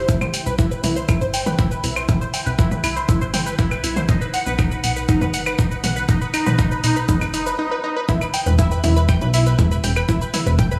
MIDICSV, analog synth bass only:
0, 0, Header, 1, 2, 480
1, 0, Start_track
1, 0, Tempo, 500000
1, 84, Time_signature, 4, 2, 24, 8
1, 10360, End_track
2, 0, Start_track
2, 0, Title_t, "Analog synth bass"
2, 0, Program_c, 0, 38
2, 83, Note_on_c, 0, 36, 99
2, 180, Note_off_c, 0, 36, 0
2, 445, Note_on_c, 0, 36, 87
2, 765, Note_off_c, 0, 36, 0
2, 803, Note_on_c, 0, 36, 81
2, 1125, Note_off_c, 0, 36, 0
2, 1164, Note_on_c, 0, 31, 106
2, 1484, Note_off_c, 0, 31, 0
2, 1523, Note_on_c, 0, 36, 100
2, 1715, Note_off_c, 0, 36, 0
2, 1763, Note_on_c, 0, 36, 101
2, 1955, Note_off_c, 0, 36, 0
2, 2003, Note_on_c, 0, 36, 99
2, 2100, Note_off_c, 0, 36, 0
2, 2365, Note_on_c, 0, 36, 92
2, 2685, Note_off_c, 0, 36, 0
2, 2723, Note_on_c, 0, 36, 79
2, 3046, Note_off_c, 0, 36, 0
2, 3085, Note_on_c, 0, 31, 105
2, 3405, Note_off_c, 0, 31, 0
2, 3443, Note_on_c, 0, 36, 103
2, 3635, Note_off_c, 0, 36, 0
2, 3684, Note_on_c, 0, 36, 99
2, 3875, Note_off_c, 0, 36, 0
2, 3924, Note_on_c, 0, 35, 99
2, 4020, Note_off_c, 0, 35, 0
2, 4285, Note_on_c, 0, 35, 91
2, 4605, Note_off_c, 0, 35, 0
2, 4644, Note_on_c, 0, 35, 79
2, 4966, Note_off_c, 0, 35, 0
2, 5005, Note_on_c, 0, 30, 102
2, 5325, Note_off_c, 0, 30, 0
2, 5363, Note_on_c, 0, 35, 101
2, 5555, Note_off_c, 0, 35, 0
2, 5603, Note_on_c, 0, 35, 100
2, 5795, Note_off_c, 0, 35, 0
2, 5843, Note_on_c, 0, 35, 100
2, 5940, Note_off_c, 0, 35, 0
2, 6204, Note_on_c, 0, 35, 92
2, 6524, Note_off_c, 0, 35, 0
2, 6563, Note_on_c, 0, 35, 82
2, 6885, Note_off_c, 0, 35, 0
2, 6925, Note_on_c, 0, 30, 109
2, 7245, Note_off_c, 0, 30, 0
2, 7763, Note_on_c, 0, 28, 98
2, 7860, Note_off_c, 0, 28, 0
2, 8125, Note_on_c, 0, 28, 91
2, 8445, Note_off_c, 0, 28, 0
2, 8483, Note_on_c, 0, 28, 82
2, 8805, Note_off_c, 0, 28, 0
2, 8845, Note_on_c, 0, 35, 103
2, 9165, Note_off_c, 0, 35, 0
2, 9203, Note_on_c, 0, 28, 102
2, 9395, Note_off_c, 0, 28, 0
2, 9443, Note_on_c, 0, 28, 96
2, 9635, Note_off_c, 0, 28, 0
2, 9684, Note_on_c, 0, 28, 97
2, 9781, Note_off_c, 0, 28, 0
2, 10044, Note_on_c, 0, 28, 90
2, 10360, Note_off_c, 0, 28, 0
2, 10360, End_track
0, 0, End_of_file